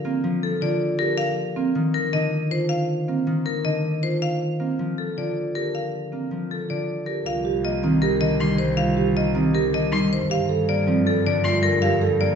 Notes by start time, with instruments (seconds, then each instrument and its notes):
Already playing: harp D3 F3
0.05 harp A#3, marimba C4
0.24 harp F3
0.43 marimba A4
0.61 harp D3, marimba F4 D5
0.99 marimba G4 A#4
1.18 marimba F5
1.56 harp A#3, marimba C4
1.75 harp D#3
1.94 marimba A#4
2.13 harp D3, marimba D#4 D#5
2.51 marimba F4 C5
2.69 marimba F5
3.08 harp A#3, marimba C4
3.27 harp D#3
3.46 marimba A#4
3.65 harp D3, marimba D#4 D#5
4.03 marimba F4 C5
4.22 marimba F5
4.60 harp A#3, marimba C4
4.79 harp F3
4.98 marimba A4
5.17 harp D3, marimba F4 D5
5.55 marimba G4 A#4
5.75 marimba F5
6.12 harp A#3, marimba C4
6.31 harp F3
6.51 marimba A4
6.69 harp D3, marimba F4 D5
7.06 marimba G4 A#4
7.26 cello C2, marimba F4 F5
7.45 marimba G4
7.64 harp A#3, marimba D#5
7.83 harp D#3, marimba C4
8.02 marimba G4 A#4
8.21 harp D3, marimba D#5
8.40 harp G3, marimba D#4, violin C6
8.58 marimba C5
8.77 marimba F4 F5
8.97 marimba G4
9.16 harp A#3, marimba D#5
9.35 harp D#3, marimba C4
9.54 marimba G4 A#4
9.73 harp D3, marimba D#5
9.92 harp G3, marimba D#4, violin C6
10.13 marimba C5
10.30 cello G2, marimba G4 F5
10.49 marimba A4
10.68 harp A#3, marimba D5
10.87 harp F3, marimba C4
11.06 marimba A4
11.26 harp D3, marimba D5
11.44 harp A3, marimba F4, violin C6
11.63 marimba A#4
11.82 marimba G4 F5
12.01 marimba A4
12.21 harp A#3, marimba D5